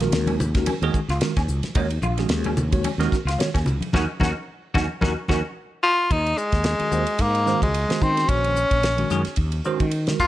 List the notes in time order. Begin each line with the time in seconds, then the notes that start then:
0.00 D#3 G#3 C#4 F#4 A#4, snare, ride
0.12 D#2, snare, ride
0.27 C#4, ride, high conga
0.40 hi-hat pedal, low conga
0.55 D#3 G#3 C#4 F#4 A#4, kick, snare, ride
0.66 C#4, ride, high conga
0.82 D#2 D#3 G#3 C#4 F#4 G#4, ride
0.94 kick, hi-hat pedal
1.08 C#2 F4 F#4 A#4, snare, ride
1.21 D#3 G#3 C#4 F#4 A#4, snare, ride
1.37 D#2 C#4 A#4, kick, snare, ride
1.48 C#2 F#4 A#4, hi-hat pedal
1.63 snare, ride, high conga
1.75 D#2 D#3 G#3 C#4 D#4 F#4 C#5, kick, ride
1.90 F#4 G#4, ride
2.02 A#1 F4, hi-hat pedal, high conga
2.18 D#3 G#3 C#4 F#4 G#4, snare, ride
2.29 D#2, snare, ride
2.44 C#4, ride, high conga
2.57 hi-hat pedal, low conga
2.72 D#3 G#3 C#4 F#4 C#5, kick, ride
2.84 C#4, ride, high conga
2.98 D#2 D#3 G#3 C#4 F#4 A#4, snare, ride
3.12 kick, snare, hi-hat pedal
3.25 C#2 F4 F#4 A#4, ride
3.29 snare
3.38 D#3 G#3 C#4 F#4 C#5, muted fretless electric bass stroke, snare, ride
3.54 D#2 C#4 F#4 A#4, kick, snare, ride
3.65 C#2 F#4 C#5, hi-hat pedal, low conga
3.81 ride, high conga
3.93 D#2 C#4 D#4 F#4 A#4, kick, snare, high conga
4.20 D#2 C#4 D#4 F#4 A#4, kick, snare, high conga
4.74 D#2 C#4 D#4 F#4 A#4, kick, snare, high conga
5.01 D#2 C#4 D#4 F#4 A#4, kick, snare, high conga
5.28 D#2 C#4 D#4 F#4 A#4, kick, snare, high conga
5.83 F4
6.11 D#2 D#4, kick, ride
6.26 ride
6.38 G#3, hi-hat pedal
6.52 D#2, kick, snare, ride
6.64 snare, ride
6.79 D#3 G#3 C#4 F#4 A#4, muted fretless electric bass stroke, ride
6.91 D#2 D#3 G#3 C#4 F#4 C5, hi-hat pedal
7.07 C5, ride
7.19 G#2 A#3, kick, ride
7.35 ride
7.46 D#3 G#3 C#4 F#4 C5, snare, hi-hat pedal
7.62 C#2 G#3, kick, ride
7.74 A#4, ride
7.88 D#3 G#3 C#4 F#4 C5, snare, ride
8.02 D#3 C4, kick, hi-hat pedal
8.17 snare, ride
8.29 A#1 C#4, kick, ride
8.44 ride
8.56 hi-hat pedal
8.71 A#1, kick, ride
8.83 snare, ride
8.98 D#3 G#3 C#4 F#4 A#4, ride
9.10 F#2 D#3 G#3 C#4 F#4 G#4, snare, hi-hat pedal
9.25 C#5, muted fretless electric bass stroke, snare, ride
9.36 D#2, kick, ride
9.52 ride
9.64 D#3 G#3 C#4 F#4 C5, hi-hat pedal
9.80 D#3, kick, ride
9.91 A#4, ride
10.07 D#3 G#3 C#4 F#4 A#4, snare, ride
10.19 D#2 F4, kick, hi-hat pedal